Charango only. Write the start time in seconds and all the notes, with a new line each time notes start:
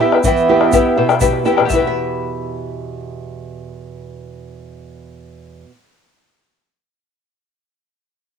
0.01 E4 B4 E5 G5
0.13 E4 B4 G5
0.26 E4 B4 E5 G5
0.50 E4 B4 E5 G5
0.61 E4 B4 G5
0.73 E4 G4 B4 E5 G5
0.98 E4 B4 E5 G5
1.09 E4 B4 G5
1.21 E4 B4 E5 G5
1.45 E4 B4 E5 G5
1.57 E4 B4 G5
1.65 G4
1.69 E4 E5
1.76 B4 G5